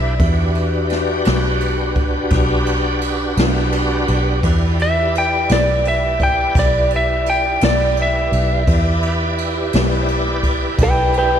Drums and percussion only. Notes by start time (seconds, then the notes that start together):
0.19 kick, ride
0.55 ride
0.90 snare, ride
1.25 snare, ride
1.60 ride
1.95 kick, ride
2.30 kick, snare, ride
2.66 ride
3.01 ride
3.37 snare, ride
3.72 ride
4.08 ride
4.43 kick, ride
4.79 ride
5.15 ride
5.49 snare, ride
5.85 ride
6.20 kick, ride
6.55 kick, snare, ride
6.90 ride
7.26 ride
7.61 snare, ride
7.97 ride
8.33 ride
8.67 kick, ride
9.02 ride
9.38 ride
9.73 snare, ride
10.08 ride
10.43 kick, ride
10.78 kick, ride
11.14 ride